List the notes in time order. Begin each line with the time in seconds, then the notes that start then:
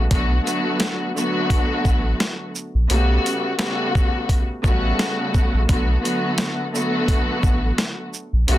0.10 B1 D3 F#3 A3 B3 F#4, kick, closed hi-hat
0.42 D3 F#3 A3 B3 F#4
0.47 closed hi-hat, shaker
0.80 snare, closed hi-hat
1.14 D3 F#3 A3 B3 F#4, shaker
1.50 kick, closed hi-hat
1.85 A1, kick, shaker
2.20 snare, closed hi-hat
2.55 shaker
2.75 A#1
2.89 B1 C#3 G3 A3 B3 F#4, closed hi-hat
3.26 closed hi-hat, shaker
3.58 C#3 G3 A3 B3 F#4, snare, closed hi-hat
3.95 kick, shaker
4.29 kick, closed hi-hat
4.63 A1 C#3 G3 A3 B3 F#4, kick, shaker
4.99 snare, closed hi-hat
5.34 kick, shaker
5.54 A#1
5.68 B1 D3 F#3 A3 B3 F#4, kick, closed hi-hat
6.01 D3 F#3 A3 B3 F#4
6.05 closed hi-hat, shaker
6.38 snare, closed hi-hat
6.72 D3 F#3 A3 B3 F#4, shaker
7.08 kick, closed hi-hat
7.43 A1, kick, shaker
7.78 snare, closed hi-hat
8.14 shaker
8.33 A#1
8.47 B1 C#3 G3 A3 B3 F#4, closed hi-hat